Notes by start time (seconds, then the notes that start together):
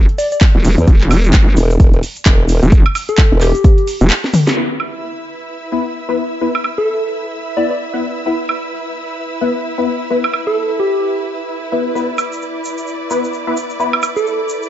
0.09 closed hi-hat
0.18 D5, open hi-hat, shaker
0.32 D5, closed hi-hat, shaker
0.41 kick, clap, open hi-hat, shaker
0.55 E1
0.64 open hi-hat, shaker
0.78 E2, closed hi-hat, shaker
0.87 E1, kick, closed hi-hat, shaker
1.01 clap
1.11 open hi-hat, high woodblock, shaker
1.24 closed hi-hat, shaker
1.33 G1, kick, clap, closed hi-hat, shaker
1.57 E1, open hi-hat, shaker
1.70 closed hi-hat, shaker
1.80 E1, kick, closed hi-hat, shaker
1.94 closed hi-hat
2.03 open hi-hat, shaker
2.16 closed hi-hat, shaker
2.26 E1, kick, clap, closed hi-hat, shaker
2.49 open hi-hat, shaker
2.63 E1, closed hi-hat, shaker
2.72 kick, closed hi-hat, shaker
2.86 high woodblock
2.95 open hi-hat, high woodblock, shaker
3.09 A4, closed hi-hat, shaker
3.18 kick, clap, closed hi-hat, shaker
3.32 E1
3.41 G4, clap, open hi-hat, shaker
3.55 closed hi-hat, shaker
3.64 kick, closed hi-hat, shaker
3.78 closed hi-hat
3.87 open hi-hat, shaker
4.01 E1, closed hi-hat, shaker
4.10 clap, open hi-hat, shaker
4.24 snare
4.33 open hi-hat, mid tom, shaker
4.47 snare, closed hi-hat, shaker
4.56 B3 E4 B4
4.75 B4
4.80 high woodblock
4.92 E6
4.98 E5
5.72 B3 E4 B4
6.09 B3 E4 B4
6.41 B3 E4 B4
6.55 high woodblock
6.64 high woodblock
6.78 A4
7.57 B3 E4 B4 D5
7.70 D5
7.93 B3 E4 B4
8.26 B3 E4 B4
8.49 high woodblock
9.41 B3 E4 B4
9.78 B3 E4 B4
10.10 B3 E4 B4
10.24 high woodblock
10.34 high woodblock
10.47 A4
10.80 G4
11.72 B3 E4 B4
11.86 D5
11.95 B3 E4 B4, shaker
12.18 D6, high woodblock, shaker
12.32 shaker
12.42 shaker
12.65 shaker
12.78 shaker
12.87 shaker
13.10 B3 E4 B4, shaker
13.24 shaker
13.33 shaker
13.47 B3 E4 B4
13.57 shaker
13.70 shaker
13.80 B3 E4 B4, shaker
13.93 high woodblock
14.03 high woodblock, shaker
14.16 A4, shaker
14.26 shaker
14.49 shaker
14.62 shaker